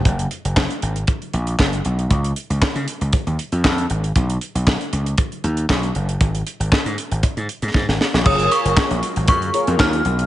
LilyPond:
<<
  \new Staff \with { instrumentName = "Synth bell" } { \time 4/4 \key fis \major \tempo 4 = 117 r1 | r1 | r1 | r1 |
dis'''8 cis'''4. cis'''4 eis'''4 | }
  \new Staff \with { instrumentName = "Analog polysynth" } { \time 4/4 \key fis \major r1 | r1 | r1 | r1 |
<eis' gis' ais' cis''>4 r4. <eis' gis' ais' cis''>4 r8 | }
  \new Staff \with { instrumentName = "Analog synth pad" } { \time 4/4 \key fis \major r1 | r1 | r1 | r1 |
<fis gis ais eis'>1 | }
  \new Staff \with { instrumentName = "Slap bass" } { \clef bass \time 4/4 \key fis \major fis,,8 r16 fis,,8 r16 gis,,8 r8 ais,,8 fis,,8 b,,8 | cis,8 r16 cis,16 r16 cis16 r16 cis,16 r16 dis,16 r16 eis,16 eis,8 gis,,8 | b,,8 r16 b,,8 r16 cis,8 r8 dis,8 b,,8 fis,,8 | gis,,8 r16 gis,,16 r16 gis,16 r16 gis,,16 r16 gis,16 r16 gis,16 gis,16 gis,,16 r16 ais,,16 |
fis,,8 r16 fis,,16 r16 ais,,16 r16 gis,,16 fis,8 r16 eis,16 dis,8 b,,8 | }
  \new DrumStaff \with { instrumentName = "Drums" } \drummode { \time 4/4 <hh bd>16 hh16 hh16 hh16 <hc bd sn>16 hh16 hh16 hh16 <hh bd>16 hh16 hh16 hh16 <hc bd sn>16 hh16 hh16 hh16 | <hh bd>16 hh16 hh16 hh16 <hc bd sn>16 hh16 hh16 hh16 <hh bd>16 hh16 hh16 hh16 <hc bd sn>16 hh16 hh16 hh16 | <hh bd>16 hh16 hh16 hh16 <hc bd sn>16 hh16 hh16 hh16 <hh bd>16 hh16 hh16 hh16 <hc bd sn>16 hh16 hh16 hh16 | <hh bd>16 hh16 hh16 hh16 <hc bd sn>16 hh16 hh16 hh16 <hh bd>16 hh16 hh16 hh16 <bd sn>16 sn16 sn16 sn16 |
<cymc bd>16 hh16 hh16 hh16 <hc bd sn>16 hh16 hh16 hh16 <hh bd>16 hh16 hh16 hh16 <hc bd sn>16 hh16 hh16 hh16 | }
>>